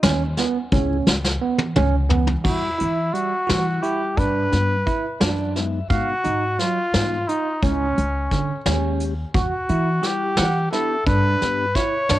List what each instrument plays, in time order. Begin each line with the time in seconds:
0.03 upright bass D#2, tine electric piano C#4, snare, closed hi-hat
0.37 tine electric piano B3, snare, closed hi-hat
0.72 upright bass C#2, tine electric piano C#4, tonewheel organ C#4 E4 G#4, kick, closed hi-hat
1.07 upright bass C#2, snare
1.24 snare
1.41 tine electric piano B3
1.58 high tom
1.76 upright bass C#2, tine electric piano C#4, mid tom
2.10 tine electric piano B3, floor tom
2.27 floor tom
2.44 upright bass E2, tonewheel organ G3 E4 F#4, trumpet E4, tine electric piano F#4, kick, crash
2.79 upright bass E3, tine electric piano E4, closed hi-hat
3.13 tine electric piano G3, trumpet F#4, closed hi-hat
3.47 upright bass E3, tonewheel organ G3 E4 F#5, tine electric piano F#4, snare, closed hi-hat
3.83 tine electric piano E4, trumpet G4, closed hi-hat
4.17 upright bass G2, tine electric piano D4, trumpet B4, kick, closed hi-hat
4.52 upright bass G2, tonewheel organ G3 B3 D4, snare, closed hi-hat
4.86 tine electric piano E4, kick, closed hi-hat
5.20 upright bass F#2, tine electric piano D4, tonewheel organ D5, snare, closed hi-hat
5.55 tonewheel organ G#3 B3 D#4 E5, snare, closed hi-hat
5.90 upright bass G#2, tonewheel organ G#3 B3 D#4, trumpet F#4, tine electric piano F5, kick, closed hi-hat
6.24 upright bass G#2, tine electric piano D#4, closed hi-hat
6.59 tine electric piano F#3, trumpet F4, snare, closed hi-hat
6.94 upright bass G#2, tonewheel organ G#3 B3 D#4, tine electric piano F4, snare, closed hi-hat
7.28 trumpet D#4, tine electric piano D#4, closed hi-hat
7.62 upright bass C#2, tonewheel organ G#3 C#4 E4, tine electric piano C#4, trumpet C#4, kick, closed hi-hat
7.98 upright bass C#2, closed hi-hat
8.32 tine electric piano D3, kick, snare, closed hi-hat
8.65 upright bass D#2, tonewheel organ G#3 C#4 G4, tine electric piano C#4, snare, closed hi-hat
9.00 closed hi-hat
9.34 upright bass E2, tine electric piano F#4, trumpet F#4, kick, closed hi-hat
9.69 upright bass E3, tine electric piano E4, closed hi-hat
10.02 tonewheel organ G3 E4 F#5, tine electric piano G4, snare, closed hi-hat
10.07 trumpet G4
10.37 upright bass E3, tine electric piano F#5, snare, closed hi-hat
10.72 tonewheel organ B3 D4 G4, tine electric piano E4, trumpet A4, snare, closed hi-hat
11.06 upright bass G2, tine electric piano D4, trumpet B4, kick, closed hi-hat
11.41 upright bass G2, tonewheel organ B3 D4 G4, snare, closed hi-hat
11.75 tine electric piano E4, trumpet C#5, kick, snare, closed hi-hat
12.09 upright bass G2, tine electric piano D4, snare, closed hi-hat